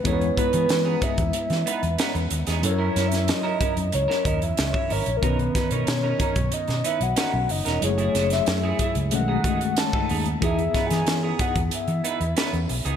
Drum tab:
HH |xxxxx-xxxxxxxxxx|x-xxx-xxx-xxx-ox|xxxxx-xxxxxxx-ox|xxxxx-xxx-xxx-ox|
SD |----o----o--o--o|--ooo----o--o---|--o-o----o--o--o|--ooo-------o---|
BD |o-o---oo--------|------o---o--o--|o-o---oo--------|------o---o--o--|

HH |xxxxx-xxxxxxxxox|
SD |--ooo-------o---|
BD |o-o---oo--------|